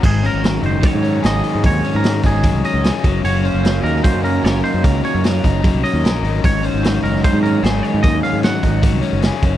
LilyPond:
<<
  \new Staff \with { instrumentName = "Clean electric guitar" } { \time 4/4 \key aes \mixolydian \tempo 4 = 150 aes'8 bes'4 c''8 des''4 ees''4 | des''8. bes'8. aes'4 ees''4. | des''8 c''4 bes'8 c''8 bes'8 des''8 c''8 | bes'8 des''8 bes'4. ees''4. |
des''8 c''4 bes'8 c''8 bes'8 c''8 des''8 | ees''8 f''8 ges''2~ ges''8 r8 | }
  \new Staff \with { instrumentName = "Overdriven electric guitar" } { \time 4/4 \key aes \mixolydian aes,8 des'8 ges8 ees'8 ges8 des'8 aes'8 ees'8 | aes,8 des'8 ges8 ees'8 ges8 des'8 aes'8 ges8 | ges8 des'8 ges8 ees'8 ges8 des'8 bes'8 ees'8 | ges8 des'8 ges8 ees'8 ges8 des'8 bes'8 ees'8 |
aes,8 des'8 ges8 ees'8 ges8 des'8 aes'8 ees'8 | aes,8 des'8 ges8 ees'8 ges8 des'8 aes'8 ges8 | }
  \new Staff \with { instrumentName = "Overdriven electric guitar" } { \clef bass \time 4/4 \key aes \mixolydian <aes, ees ges ees'>1~ | <aes, ees ges ees'>2.~ <aes, ees ges ees'>8 <ges, des ges bes des'>8~ | <ges, des ges bes des'>1~ | <ges, des ges bes des'>2.~ <ges, des ges bes des'>8 r8 |
<aes, ees ges ees'>1~ | <aes, ees ges ees'>2.~ <aes, ees ges ees'>8 <ges, des ges bes des'>8 | }
  \new Staff \with { instrumentName = "Fingered electric bass" } { \clef bass \time 4/4 \key aes \mixolydian aes,,8. aes,,8. ges,,8 r16 aes,8. aes,,8 r16 aes,16 | ees,8 r16 aes,8. aes,,8. c,16 r16 des,8 r16 ges,,8 | ges,,8. ges,,8. ees,8 r16 ges,8. ges,,8 r16 ges,16 | des,8 r16 ges,8. ges,,8. c,16 r16 ees,16 bes,,8 aes,,8 |
aes,,8. aes,,8. ges,,8 r16 aes,8. aes,,8 r16 aes,16 | ees,8 r16 aes,8. aes,,8. c,16 r16 ges,,8 r16 ges,,8 | }
  \new DrumStaff \with { instrumentName = "Drums" } \drummode { \time 4/4 <cymc bd>8 hho8 <hho sn>8 hho8 <hho bd>8 hho8 <hho sn>8 hho8 | <hho bd>8 hho8 <hho sn>16 sn16 <hho bd>16 sn16 <hho bd>8 hho8 <hho sn>8 <hho bd>8 | hho8 hho8 <hho sn>8 hho16 sn16 <hho bd>8 hho8 <hho sn>8 hho8 | <hho bd>8 hho8 <hho sn>8 <hho bd>8 <hho bd>8 hho8 <hho sn>8 hho8 |
<hho bd>8 hho8 <hho sn>16 sn16 hho16 sn16 <hho bd>8 hho8 <hho sn>8 hho8 | <hho bd>8 hho8 <hho sn>8 <hho bd>8 <hho bd>8 hho8 <hho sn>8 <hho bd>8 | }
>>